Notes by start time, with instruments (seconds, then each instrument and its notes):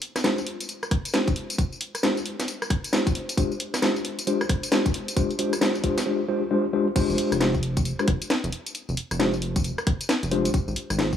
0.02 open hi-hat
0.16 cross-stick, snare, closed hi-hat, tambourine
0.24 tine electric piano G#3 D4 F4 G4 C5, snare, tambourine
0.38 tambourine
0.47 open hi-hat
0.60 closed hi-hat, tambourine
0.69 closed hi-hat, tambourine
0.83 cross-stick, tambourine
0.91 kick, cross-stick, open hi-hat
1.05 closed hi-hat, tambourine
1.14 tine electric piano G#3 D4 F4 G4 C5, snare, tambourine
1.28 kick, closed hi-hat, tambourine
1.36 open hi-hat
1.50 closed hi-hat, tambourine
1.58 kick, closed hi-hat, tambourine
1.72 tambourine
1.81 open hi-hat
1.95 cross-stick, closed hi-hat, tambourine
2.03 tine electric piano G#3 D4 F4 G4 C5, snare, tambourine
2.17 tambourine
2.26 open hi-hat
2.40 snare, closed hi-hat, tambourine
2.48 closed hi-hat, tambourine
2.62 cross-stick, tambourine
2.70 kick, cross-stick, open hi-hat
2.84 closed hi-hat, tambourine
2.93 tine electric piano G#3 D4 F4 G4 C5, snare, tambourine
3.07 kick, closed hi-hat, tambourine
3.15 open hi-hat
3.29 closed hi-hat, tambourine
3.37 tine electric piano G#3 D4 F4 G4 C5, kick, closed hi-hat, tambourine
3.52 tambourine
3.60 open hi-hat
3.74 cross-stick, snare, closed hi-hat, tambourine
3.82 tine electric piano G#3 D4 F4 G4 C5, snare, tambourine
3.96 tambourine
4.05 open hi-hat
4.19 closed hi-hat, tambourine
4.27 tine electric piano G#3 D4 F4 G4 C5, closed hi-hat, tambourine
4.41 cross-stick, tambourine
4.49 kick, cross-stick, open hi-hat
4.63 closed hi-hat, tambourine
4.72 tine electric piano G#3 D4 F4 G4 C5, snare, tambourine
4.86 kick, closed hi-hat, tambourine
4.94 open hi-hat
5.08 closed hi-hat, tambourine
5.17 tine electric piano G#3 D4 F4 G4 C5, kick, closed hi-hat, tambourine
5.31 closed hi-hat, tambourine
5.39 tine electric piano G#3 D4 F4 G4 C5, open hi-hat
5.53 cross-stick, closed hi-hat, tambourine
5.61 tine electric piano G#3 D4 F4 G4 C5, snare, tambourine
5.75 tambourine
5.84 tine electric piano G#3 D4 F4 G4 C5, kick, open hi-hat
5.98 snare, closed hi-hat, tambourine
6.06 tine electric piano G#3 D4 F4 G4 C5
6.29 tine electric piano G#3 D4 F4 G4 C5
6.51 tine electric piano G#3 D4 F4 G4 C5
6.73 tine electric piano G#3 D4 F4 G4 C5
6.96 tine electric piano G#3 D4 F4 G4 C5, kick, closed hi-hat, crash, tambourine
7.10 analog synth bass F1, tambourine
7.18 open hi-hat
7.32 analog synth bass F1, cross-stick, closed hi-hat, tambourine
7.41 tine electric piano G#3 D4 F4 G4 C5, snare, tambourine
7.54 kick, tambourine
7.63 open hi-hat
7.77 kick, closed hi-hat, tambourine
7.85 closed hi-hat, tambourine
7.99 tine electric piano G#3 D4 F4 G4 C5, cross-stick, tambourine
8.08 analog synth bass F1, kick, cross-stick, open hi-hat
8.22 closed hi-hat, tambourine
8.30 snare, tambourine
8.44 analog synth bass F1, closed hi-hat, tambourine
8.52 open hi-hat
8.66 closed hi-hat, tambourine
8.75 closed hi-hat, tambourine
8.89 analog synth bass F1, tambourine
8.97 open hi-hat
9.11 analog synth bass F1, cross-stick, closed hi-hat, tambourine
9.20 tine electric piano G#3 D4 F4 G4 C5, snare, tambourine
9.34 tambourine
9.42 open hi-hat
9.56 kick, closed hi-hat, tambourine
9.64 closed hi-hat, tambourine
9.78 cross-stick, tambourine
9.87 kick, cross-stick, open hi-hat
10.01 closed hi-hat, tambourine
10.09 snare, tambourine
10.23 analog synth bass F1, closed hi-hat, tambourine
10.31 tine electric piano G#3 D4 F4 G4 C5, open hi-hat
10.45 closed hi-hat, tambourine
10.54 kick, closed hi-hat, tambourine
10.68 analog synth bass G#1, tambourine
10.76 open hi-hat
10.90 analog synth bass G#1, cross-stick, closed hi-hat, tambourine
10.99 tine electric piano A#3 D#4 F4 G#4 C5, snare, tambourine
11.13 kick, tambourine